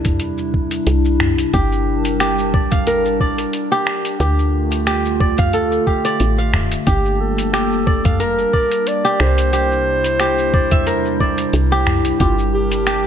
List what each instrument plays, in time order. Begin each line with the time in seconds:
Already playing: fm bass E2, ambient pad C3 G3 D4 E4
0.05 kick, closed hi-hat, udu, shaker
0.20 closed hi-hat, shaker
0.38 shaker
0.54 kick
0.71 closed hi-hat, shaker
0.87 fm bass C2, closed hi-hat, shaker
1.05 shaker
1.20 finger snap, udu
1.38 closed hi-hat, shaker
1.53 fm bass G1, ambient pad G3 A#4 A5, kora G4, kick, closed hi-hat, shaker
1.72 shaker
2.05 closed hi-hat, shaker
2.20 kora G4, finger snap, closed hi-hat, shaker
2.39 shaker
2.54 fm bass A#1, kora D5, kick
2.71 kora F5, kick, closed hi-hat, udu, shaker
2.87 kora A#4, closed hi-hat, shaker
3.05 shaker
3.20 kora D5, kick
3.38 closed hi-hat, shaker
3.53 closed hi-hat, shaker
3.72 kora G4, shaker
3.87 finger snap
4.05 closed hi-hat, shaker
4.20 fm bass D2, ambient pad D3 A3 F4, kora G4, closed hi-hat, shaker
4.39 shaker
4.72 closed hi-hat, shaker
4.87 kora G4, finger snap, closed hi-hat, shaker
5.05 shaker
5.20 kora D5, kick
5.38 kora F5, kick, closed hi-hat, udu, shaker
5.53 kora A4, closed hi-hat, shaker
5.72 shaker
5.87 kora G4, kick
6.05 kora D5, closed hi-hat, shaker
6.20 fm bass A1, closed hi-hat, shaker
6.38 kora F5, shaker
6.53 fm bass D1, finger snap, udu
6.72 closed hi-hat, shaker
6.87 fm bass G1, ambient pad G3 A#3 D4 A5, kora G4, clarinet G4, kick, closed hi-hat, shaker
7.05 shaker
7.21 clarinet A4
7.38 closed hi-hat, shaker
7.53 kora G4, finger snap, closed hi-hat, shaker
7.72 shaker
7.87 kora D5, kick
8.05 kora F5, kick, closed hi-hat, udu, shaker
8.20 kora A#4, clarinet A#4, closed hi-hat, shaker
8.38 shaker
8.53 kora D5, kick
8.72 closed hi-hat, shaker
8.87 clarinet D5, closed hi-hat, shaker
9.05 kora G4, shaker
9.20 fm bass C2, clarinet C5, finger snap
9.38 closed hi-hat, shaker
9.53 ambient pad C3 E4, kora G4, closed hi-hat, shaker
9.72 shaker
10.04 closed hi-hat, shaker
10.20 kora G4, finger snap, closed hi-hat, shaker
10.38 shaker
10.54 fm bass E2, kora D5, kick
10.71 kora E5, kick, closed hi-hat, udu, shaker
10.87 kora A#4, closed hi-hat, shaker
11.05 shaker
11.20 kora D5, kick
11.38 closed hi-hat, shaker
11.53 fm bass C2, closed hi-hat, shaker
11.72 kora G4, shaker
11.86 finger snap, udu
12.05 closed hi-hat, shaker
12.20 fm bass G1, clarinet F4, kora G4, ambient pad A#4 A5, kick, closed hi-hat, shaker
12.39 shaker
12.54 clarinet G4
12.72 closed hi-hat, shaker
12.87 kora G4, finger snap, closed hi-hat, shaker